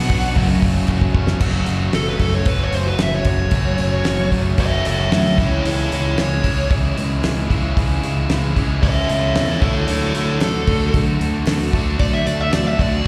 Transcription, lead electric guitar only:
Already playing: F#5
1.94 A4
2.08 B4
2.20 A4
2.35 C#5
2.47 B4
2.63 C#5
2.74 C5
2.88 B4
3.02 E5
3.14 C#5
3.27 C#5
4.59 C#5 E5
4.87 C#5 E5
5.13 C#5 E5
5.40 E4 C#5
5.66 E4 C#5
5.93 E4 C#5
6.20 C#5
8.83 C#5 E5
9.09 C#5 E5
9.36 C#5 E5
9.62 A4 C#5
9.87 A4 C#5
10.15 A4 C#5
10.43 A4
12.00 D5
12.14 E5
12.27 D5
12.40 E5
12.53 D5
12.67 E5
12.80 D5

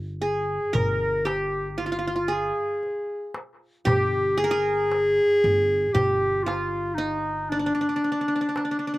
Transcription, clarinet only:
0.22 G#4
0.74 A#4
1.26 G4
1.71 G4
1.79 F4
2.33 G#4
3.87 G4
4.39 G#4
5.93 G4
6.44 F4
6.95 D#4
7.50 D4

